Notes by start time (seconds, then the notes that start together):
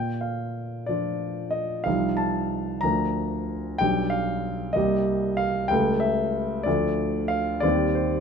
Already playing: A#2 G5
0.21 F5
0.86 F3 D4 F4 D5
1.51 D#5
1.84 C2 F3 D#4 F4 F5
2.17 A5
2.81 D2 F3 D4 A#4 A#5
3.78 B1 G3 D4 G4 G5
4.10 F5
4.73 C2 G3 A#3 G4 D#5
5.37 F5
5.68 C#2 G3 A3 G5
5.72 A4
6.00 E5
6.63 D2 F3 A3 A4 D5
7.28 F5
7.60 D#2 G3 C4 G4 D5
7.95 C5